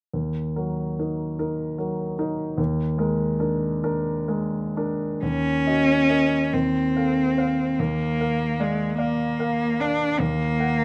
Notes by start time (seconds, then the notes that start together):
0.14 D#2
0.56 F#3 A#4
0.99 D#4 A#4
1.39 D#4 A#4
1.78 F#3 A#4
2.19 D#4 A#4
2.58 D#2
2.98 G#3 A#4
3.40 D4 A#4
3.84 D4 A#4
4.28 G#3 A#4
4.77 D4 A#4
5.23 D#2 C#4
5.67 F#4 D#5
6.09 A#4 D#5
6.53 D#2 C4
6.96 A4 F5
7.38 C5 F5
7.79 D#2 A#3
8.21 A#4 F5
8.60 G#3 D5 F5
8.98 A#3 D5 F5
9.39 A#4 F5
9.80 D4 D5 F5
10.19 D#2 A#3
10.59 A#4 F#5